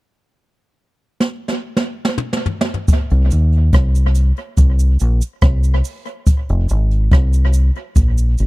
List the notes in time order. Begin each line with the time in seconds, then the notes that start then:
1.20 snare
1.48 snare
1.77 snare
2.05 snare
2.18 mid tom
2.33 snare
2.46 floor tom
2.61 snare
2.74 floor tom
2.88 kick, closed hi-hat, cabasa
3.10 C2, closed hi-hat
3.30 D#2, closed hi-hat, cabasa
3.52 closed hi-hat
3.72 C2, kick, cross-stick, closed hi-hat
3.94 closed hi-hat, cabasa
4.14 closed hi-hat, cabasa
4.36 closed hi-hat
4.57 C2, kick, closed hi-hat, cabasa
4.79 closed hi-hat, cabasa
5.00 A#1, closed hi-hat, cabasa
5.21 closed hi-hat, cabasa
5.41 C2, kick, cross-stick, closed hi-hat
5.63 closed hi-hat, cabasa
5.84 open hi-hat, cabasa
6.06 closed hi-hat
6.27 kick, closed hi-hat, cabasa
6.49 F1, closed hi-hat
6.69 G#1, closed hi-hat, cabasa
6.91 closed hi-hat
7.11 C2, kick, cross-stick, closed hi-hat
7.33 closed hi-hat, cabasa
7.53 closed hi-hat, cabasa
7.75 closed hi-hat
7.95 A#1, kick, closed hi-hat, cabasa
8.18 closed hi-hat, cabasa
8.38 G#1, closed hi-hat, cabasa